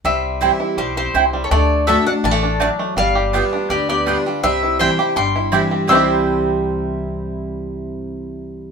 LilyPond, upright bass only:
\new Staff \with { instrumentName = "Upright bass" } { \clef bass \time 4/4 \key c \major \tempo 4 = 165 c,2 b,,4 c,4 | d,2 a,,2 | g,,2 d,2 | c,2 g,,2 |
c,1~ | c,1 | }